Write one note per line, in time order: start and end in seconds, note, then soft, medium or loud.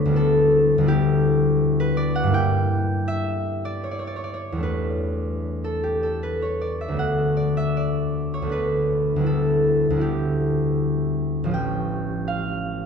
0.00 0.15 A3 medium
0.00 3.29 D4 medium
0.00 1.79 B4 medium
0.00 1.96 D5 medium
0.00 0.20 F#5 loud
0.05 0.77 D2 medium
0.05 0.79 G3 medium
0.11 0.82 B3 medium
0.11 0.85 E4 medium
0.16 1.39 A4 loud
0.78 2.30 D2 medium
0.78 2.25 G3 medium
0.83 2.32 B3 medium
0.83 2.30 E4 medium
0.88 4.78 G4 loud
1.80 2.09 B4 loud
1.97 2.27 D5 loud
2.15 2.45 F#5 loud
2.24 4.62 G2 medium
2.24 4.54 G3 medium
2.28 4.64 A#3 medium
2.28 6.22 E4 medium
2.34 6.24 G5 loud
3.08 6.80 E5 loud
3.65 3.90 D5 medium
3.84 3.98 C#5 medium
3.91 4.06 D5 medium
3.99 4.14 C#5 medium
4.07 4.22 D5 medium
4.16 4.31 C#5 medium
4.24 4.39 D5 medium
4.34 4.83 C#5 medium
4.52 6.97 E2 medium
4.52 6.99 G3 soft
4.58 6.90 A3 soft
4.58 6.95 D4 soft
4.63 6.22 B4 medium
5.64 5.97 A4 medium
5.83 6.17 G4 medium
6.03 6.36 A4 medium
6.23 6.56 B4 medium
6.42 6.75 C#5 medium
6.61 6.94 D5 medium
6.81 7.13 E5 medium
6.88 8.41 D2 medium
6.88 8.43 A3 soft
6.93 8.45 B3 soft
6.93 8.48 D4 soft
6.99 9.29 F#5 medium
7.37 7.70 D5 medium
7.57 7.90 E5 medium
7.77 11.56 D5 medium
8.34 8.65 C#5 medium
8.42 9.15 D2 medium
8.42 9.25 A3 soft
8.47 9.20 B3 soft
8.47 11.55 D4 soft
8.52 11.56 B4 medium
9.16 9.89 D2 medium
9.16 9.92 G3 soft
9.21 9.95 B3 medium
9.21 9.97 E4 soft
9.26 10.52 A4 medium
9.90 11.51 D2 medium
9.90 12.86 G3 soft
9.96 11.54 B3 soft
9.96 11.55 E4 medium
10.01 12.86 G4 medium
11.44 12.86 A1 medium
11.44 12.86 F3 medium
11.48 12.86 C#4 medium
11.48 12.86 F4 medium
11.54 12.86 G5 loud
12.28 12.86 F5 medium